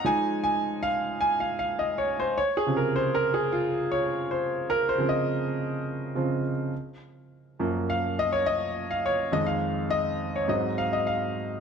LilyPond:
<<
  \new Staff \with { instrumentName = "Grand piano" } { \time 4/4 \key des \major \tempo 4 = 103 \tuplet 3/2 { aes''4 aes''8~ aes''8 f''4 aes''8 f''8 f''8 ees''8 des''8 c''8 } | \tuplet 3/2 { des''8 aes'8 bes'8 c''8 bes'8 aes'8 f'4 des''8~ des''8 c''4 } | \tuplet 3/2 { bes'8 c''8 ees''8~ } ees''2~ ees''16 r8. | r4. f''8 ees''16 des''16 ees''8. f''16 des''8 |
ees''16 f''8 r16 ees''8. des''16 ees''8 f''16 ees''16 f''8 r8 | }
  \new Staff \with { instrumentName = "Grand piano" } { \clef bass \time 4/4 \key des \major <f aes ees'>8 r2. r8 | r8 <c des f>2.~ <c des f>8~ | <c des f>8 <des f c'>2 <des f c'>8 r4 | r4 <ges, f bes>8 r2 r8 |
<f, ees aes>4. r8 <aes, ges c'>2 | }
>>